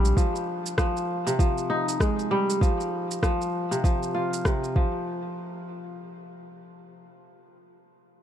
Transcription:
0, 0, Header, 1, 4, 480
1, 0, Start_track
1, 0, Tempo, 612245
1, 132, Time_signature, 4, 2, 24, 8
1, 6451, End_track
2, 0, Start_track
2, 0, Title_t, "Kora"
2, 0, Program_c, 0, 46
2, 0, Note_on_c, 0, 48, 71
2, 0, Note_on_c, 0, 53, 80
2, 0, Note_on_c, 0, 55, 83
2, 0, Note_on_c, 0, 56, 78
2, 0, Note_on_c, 0, 62, 91
2, 122, Note_off_c, 0, 53, 0
2, 131, Note_on_c, 0, 53, 70
2, 171, Note_off_c, 0, 48, 0
2, 171, Note_off_c, 0, 55, 0
2, 171, Note_off_c, 0, 56, 0
2, 603, Note_off_c, 0, 53, 0
2, 612, Note_on_c, 0, 53, 88
2, 728, Note_off_c, 0, 62, 0
2, 992, Note_on_c, 0, 48, 67
2, 1011, Note_off_c, 0, 53, 0
2, 1090, Note_on_c, 0, 53, 74
2, 1331, Note_on_c, 0, 63, 82
2, 1570, Note_on_c, 0, 56, 80
2, 1811, Note_on_c, 0, 55, 85
2, 2039, Note_off_c, 0, 53, 0
2, 2048, Note_on_c, 0, 53, 71
2, 2091, Note_off_c, 0, 48, 0
2, 2091, Note_off_c, 0, 55, 0
2, 2091, Note_off_c, 0, 56, 0
2, 2520, Note_off_c, 0, 53, 0
2, 2529, Note_on_c, 0, 53, 90
2, 2602, Note_off_c, 0, 63, 0
2, 2911, Note_on_c, 0, 48, 64
2, 2931, Note_off_c, 0, 53, 0
2, 3010, Note_on_c, 0, 53, 73
2, 3250, Note_on_c, 0, 65, 61
2, 3481, Note_off_c, 0, 48, 0
2, 3490, Note_on_c, 0, 48, 73
2, 3531, Note_off_c, 0, 53, 0
2, 3731, Note_on_c, 0, 53, 72
2, 3771, Note_off_c, 0, 48, 0
2, 4437, Note_off_c, 0, 65, 0
2, 5530, Note_off_c, 0, 53, 0
2, 6451, End_track
3, 0, Start_track
3, 0, Title_t, "Analog synth bass"
3, 0, Program_c, 1, 38
3, 0, Note_on_c, 1, 34, 85
3, 102, Note_off_c, 1, 34, 0
3, 6451, End_track
4, 0, Start_track
4, 0, Title_t, "Drums"
4, 39, Note_on_c, 9, 82, 60
4, 118, Note_off_c, 9, 82, 0
4, 131, Note_on_c, 9, 36, 99
4, 139, Note_on_c, 9, 82, 58
4, 210, Note_off_c, 9, 36, 0
4, 217, Note_off_c, 9, 82, 0
4, 279, Note_on_c, 9, 82, 33
4, 357, Note_off_c, 9, 82, 0
4, 518, Note_on_c, 9, 82, 64
4, 597, Note_off_c, 9, 82, 0
4, 611, Note_on_c, 9, 36, 105
4, 611, Note_on_c, 9, 37, 98
4, 616, Note_on_c, 9, 82, 57
4, 689, Note_off_c, 9, 36, 0
4, 689, Note_off_c, 9, 37, 0
4, 695, Note_off_c, 9, 82, 0
4, 759, Note_on_c, 9, 82, 33
4, 837, Note_off_c, 9, 82, 0
4, 997, Note_on_c, 9, 82, 65
4, 1076, Note_off_c, 9, 82, 0
4, 1090, Note_on_c, 9, 36, 97
4, 1097, Note_on_c, 9, 82, 55
4, 1169, Note_off_c, 9, 36, 0
4, 1176, Note_off_c, 9, 82, 0
4, 1237, Note_on_c, 9, 82, 32
4, 1316, Note_off_c, 9, 82, 0
4, 1478, Note_on_c, 9, 82, 63
4, 1557, Note_off_c, 9, 82, 0
4, 1570, Note_on_c, 9, 36, 93
4, 1572, Note_on_c, 9, 37, 87
4, 1578, Note_on_c, 9, 82, 52
4, 1649, Note_off_c, 9, 36, 0
4, 1651, Note_off_c, 9, 37, 0
4, 1656, Note_off_c, 9, 82, 0
4, 1718, Note_on_c, 9, 82, 32
4, 1796, Note_off_c, 9, 82, 0
4, 1959, Note_on_c, 9, 82, 62
4, 2037, Note_off_c, 9, 82, 0
4, 2050, Note_on_c, 9, 36, 104
4, 2060, Note_on_c, 9, 82, 55
4, 2128, Note_off_c, 9, 36, 0
4, 2138, Note_off_c, 9, 82, 0
4, 2200, Note_on_c, 9, 82, 30
4, 2278, Note_off_c, 9, 82, 0
4, 2439, Note_on_c, 9, 82, 59
4, 2517, Note_off_c, 9, 82, 0
4, 2530, Note_on_c, 9, 36, 97
4, 2531, Note_on_c, 9, 37, 94
4, 2537, Note_on_c, 9, 82, 49
4, 2608, Note_off_c, 9, 36, 0
4, 2609, Note_off_c, 9, 37, 0
4, 2615, Note_off_c, 9, 82, 0
4, 2677, Note_on_c, 9, 82, 31
4, 2755, Note_off_c, 9, 82, 0
4, 2916, Note_on_c, 9, 82, 60
4, 2995, Note_off_c, 9, 82, 0
4, 3010, Note_on_c, 9, 36, 99
4, 3016, Note_on_c, 9, 82, 49
4, 3089, Note_off_c, 9, 36, 0
4, 3095, Note_off_c, 9, 82, 0
4, 3157, Note_on_c, 9, 82, 31
4, 3236, Note_off_c, 9, 82, 0
4, 3397, Note_on_c, 9, 82, 61
4, 3476, Note_off_c, 9, 82, 0
4, 3490, Note_on_c, 9, 36, 96
4, 3490, Note_on_c, 9, 37, 88
4, 3495, Note_on_c, 9, 82, 52
4, 3568, Note_off_c, 9, 37, 0
4, 3569, Note_off_c, 9, 36, 0
4, 3574, Note_off_c, 9, 82, 0
4, 3636, Note_on_c, 9, 82, 28
4, 3715, Note_off_c, 9, 82, 0
4, 3730, Note_on_c, 9, 36, 99
4, 3809, Note_off_c, 9, 36, 0
4, 6451, End_track
0, 0, End_of_file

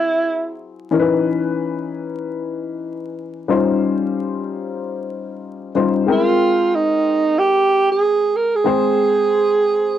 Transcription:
0, 0, Header, 1, 3, 480
1, 0, Start_track
1, 0, Key_signature, -4, "major"
1, 0, Tempo, 500000
1, 9585, End_track
2, 0, Start_track
2, 0, Title_t, "Alto saxophone"
2, 0, Program_c, 0, 65
2, 0, Note_on_c, 0, 64, 91
2, 580, Note_off_c, 0, 64, 0
2, 5875, Note_on_c, 0, 65, 90
2, 6479, Note_on_c, 0, 63, 89
2, 6494, Note_off_c, 0, 65, 0
2, 7090, Note_on_c, 0, 67, 108
2, 7104, Note_off_c, 0, 63, 0
2, 7584, Note_off_c, 0, 67, 0
2, 7599, Note_on_c, 0, 68, 104
2, 8025, Note_on_c, 0, 70, 85
2, 8040, Note_off_c, 0, 68, 0
2, 8213, Note_on_c, 0, 68, 94
2, 8228, Note_off_c, 0, 70, 0
2, 9585, Note_off_c, 0, 68, 0
2, 9585, End_track
3, 0, Start_track
3, 0, Title_t, "Upright piano"
3, 0, Program_c, 1, 0
3, 0, Note_on_c, 1, 54, 60
3, 0, Note_on_c, 1, 60, 59
3, 0, Note_on_c, 1, 64, 58
3, 0, Note_on_c, 1, 68, 72
3, 835, Note_off_c, 1, 54, 0
3, 842, Note_off_c, 1, 64, 0
3, 845, Note_off_c, 1, 68, 0
3, 869, Note_off_c, 1, 60, 0
3, 871, Note_on_c, 1, 52, 77
3, 877, Note_on_c, 1, 61, 68
3, 889, Note_on_c, 1, 63, 62
3, 889, Note_on_c, 1, 70, 65
3, 953, Note_on_c, 1, 71, 79
3, 964, Note_off_c, 1, 70, 0
3, 3317, Note_off_c, 1, 52, 0
3, 3319, Note_off_c, 1, 61, 0
3, 3325, Note_off_c, 1, 63, 0
3, 3343, Note_on_c, 1, 55, 67
3, 3347, Note_on_c, 1, 61, 65
3, 3353, Note_on_c, 1, 63, 66
3, 3357, Note_off_c, 1, 71, 0
3, 3359, Note_on_c, 1, 65, 65
3, 3363, Note_on_c, 1, 72, 72
3, 5482, Note_off_c, 1, 55, 0
3, 5484, Note_off_c, 1, 61, 0
3, 5487, Note_off_c, 1, 63, 0
3, 5490, Note_off_c, 1, 65, 0
3, 5491, Note_off_c, 1, 72, 0
3, 5521, Note_on_c, 1, 55, 56
3, 5523, Note_on_c, 1, 61, 53
3, 5527, Note_on_c, 1, 65, 54
3, 5528, Note_on_c, 1, 63, 57
3, 5534, Note_on_c, 1, 72, 66
3, 5825, Note_on_c, 1, 56, 61
3, 5829, Note_on_c, 1, 60, 58
3, 5835, Note_off_c, 1, 55, 0
3, 5836, Note_off_c, 1, 61, 0
3, 5838, Note_off_c, 1, 63, 0
3, 5838, Note_off_c, 1, 65, 0
3, 5839, Note_on_c, 1, 79, 61
3, 5842, Note_off_c, 1, 72, 0
3, 5843, Note_on_c, 1, 70, 75
3, 8271, Note_off_c, 1, 56, 0
3, 8273, Note_off_c, 1, 60, 0
3, 8278, Note_off_c, 1, 79, 0
3, 8280, Note_off_c, 1, 70, 0
3, 8295, Note_on_c, 1, 56, 60
3, 8308, Note_on_c, 1, 60, 52
3, 8310, Note_on_c, 1, 79, 52
3, 8321, Note_on_c, 1, 72, 74
3, 9585, Note_off_c, 1, 56, 0
3, 9585, Note_off_c, 1, 60, 0
3, 9585, Note_off_c, 1, 72, 0
3, 9585, Note_off_c, 1, 79, 0
3, 9585, End_track
0, 0, End_of_file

